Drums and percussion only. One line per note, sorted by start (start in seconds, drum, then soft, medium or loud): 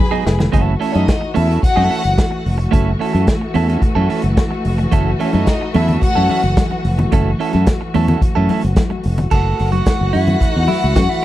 0.13 high conga soft
0.27 snare loud
0.27 muted conga soft
0.40 snare medium
0.40 low conga medium
0.53 kick loud
0.53 closed hi-hat medium
0.82 open hi-hat medium
0.95 closed hi-hat soft
1.08 kick loud
1.08 snare loud
1.08 closed hi-hat medium
1.35 open hi-hat medium
1.51 closed hi-hat soft
1.63 kick loud
1.63 closed hi-hat medium
1.91 open hi-hat medium
2.03 closed hi-hat soft
2.18 kick loud
2.18 snare loud
2.18 closed hi-hat medium
2.46 open hi-hat medium
2.59 closed hi-hat soft
2.73 kick loud
2.73 closed hi-hat medium
3.01 open hi-hat medium
3.15 closed hi-hat soft
3.27 kick loud
3.27 snare loud
3.27 closed hi-hat medium
3.54 open hi-hat medium
3.69 closed hi-hat soft
3.82 kick loud
3.82 closed hi-hat medium
4.10 open hi-hat medium
4.22 closed hi-hat soft
4.37 kick loud
4.37 snare loud
4.37 closed hi-hat medium
4.65 open hi-hat medium
4.78 closed hi-hat soft
4.92 kick loud
4.92 closed hi-hat medium
5.20 open hi-hat medium
5.20 muted conga soft
5.33 closed hi-hat soft
5.33 high conga medium
5.46 kick loud
5.46 snare loud
5.46 closed hi-hat medium
5.46 muted conga soft
5.74 open hi-hat medium
5.74 muted conga soft
5.74 high conga medium
5.89 closed hi-hat soft
5.89 low conga medium
6.02 kick loud
6.02 closed hi-hat medium
6.02 muted conga soft
6.29 open hi-hat medium
6.29 muted conga soft
6.29 high conga medium
6.42 closed hi-hat soft
6.57 kick loud
6.57 snare loud
6.57 closed hi-hat medium
6.57 high conga medium
6.71 high conga soft
6.84 open hi-hat medium
6.98 closed hi-hat soft
6.98 low conga medium
7.12 kick loud
7.12 closed hi-hat medium
7.12 muted conga soft
7.40 open hi-hat medium
7.53 closed hi-hat soft
7.53 high conga medium
7.66 kick loud
7.66 snare loud
7.66 closed hi-hat medium
7.94 open hi-hat medium
7.94 muted conga soft
7.94 high conga medium
8.08 closed hi-hat soft
8.08 low conga medium
8.21 kick loud
8.21 closed hi-hat medium
8.49 open hi-hat medium
8.49 high conga medium
8.61 closed hi-hat medium
8.76 kick loud
8.76 snare loud
8.76 closed hi-hat medium
8.76 muted conga soft
8.76 high conga medium
8.90 high conga soft
9.03 open hi-hat medium
9.17 closed hi-hat soft
9.17 low conga medium
9.31 kick loud
9.31 crash medium
9.59 open hi-hat medium
9.59 muted conga soft
9.72 closed hi-hat soft
9.72 high conga medium
9.86 kick loud
9.86 snare loud
9.86 closed hi-hat medium
10.13 open hi-hat medium
10.13 muted conga soft
10.13 high conga medium
10.28 closed hi-hat soft
10.28 low conga medium
10.40 kick loud
10.40 closed hi-hat medium
10.40 muted conga soft
10.68 open hi-hat medium
10.68 muted conga soft
10.68 high conga medium
10.81 closed hi-hat soft
10.96 kick loud
10.96 snare loud
10.96 closed hi-hat medium
10.96 muted conga soft
10.96 high conga medium
11.09 high conga medium